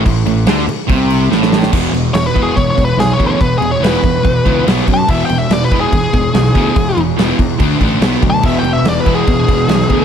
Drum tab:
CC |x-x-x-x-x-x-----|x-x-x-x-x-x-x-x-|x-x-x-x-x-x-x-x-|x-x-x-x-x-x-x-x-|
SD |----o-------oooo|----o-------o---|----o-------o---|----o-------oo--|
BD |o-------o-------|o-----o-o-o---o-|o-----o-o-o---o-|o-----o-o-o---o-|

CC |x-x-x-x-x-x-x-x-|x-x-x-x-x-x-x-x-|
SD |----o-------oo--|----o-------oo--|
BD |o-----o-o-o---o-|o-----o-o-o---o-|